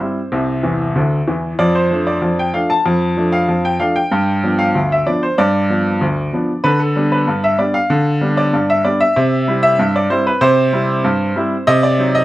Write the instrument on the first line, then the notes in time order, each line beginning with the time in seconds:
upright piano
Already playing: C5
0.00 G3 C4 E4
0.32 C2 C3
0.63 E2 E3
0.96 D2 D3
1.28 E2 E3
1.59 F2 D5
1.75 C5
1.91 F3 A3 D4
2.07 D5
2.22 F2
2.39 G5
2.54 F3 A3 D4 F5
2.70 A5
2.86 F2
3.17 F3 A3 D4
3.32 F5
3.49 F2
3.65 G5
3.80 F3 A3 D4 F5
3.96 G5
4.11 G2
4.43 F3 B3 D4
4.59 F5
4.75 D2
4.92 E5
5.06 F3 B3 D4 D5
5.23 C5
5.38 G2 D5
5.70 F3 B3 D4
6.01 D2
6.33 F3 B3 D4
6.64 D3 B4
6.79 A4
6.96 G3 B3 D4
7.12 B4
7.27 G2
7.44 E5
7.59 G3 B3 D4 D5
7.74 F5
7.90 D3
8.21 G3 B3 D4
8.37 D5
8.53 G2
8.70 E5
8.85 G3 B3 D4 D5
9.01 E5
9.16 C3
9.48 G3 C4 E4
9.63 E5
9.79 G2
9.96 D5
10.10 G3 C4 E4 C5
10.27 B4
10.41 C3 C5
10.73 G3 C4 E4
11.04 G2
11.36 G3 C4 E4
11.67 C3 D#5
11.83 D5
11.99 F#3 C4 D#4
12.15 D#5